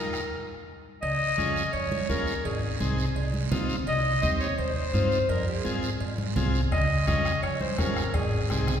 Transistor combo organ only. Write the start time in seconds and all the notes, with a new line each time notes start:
Already playing: D#4 F4 A#4
1.37 C#4 F4 G#4
2.09 C#4 F4 G#4
2.80 C4 D#4 G#4
3.51 C4 D#4 F4
4.21 C4 D#4 G4
4.93 C4 D#4 F4
5.64 C4 F4 G#4
6.35 C4 F4 G#4
7.07 C#4 F4 G#4
7.79 C#4 F4 G#4
8.50 C4 D#4 G#4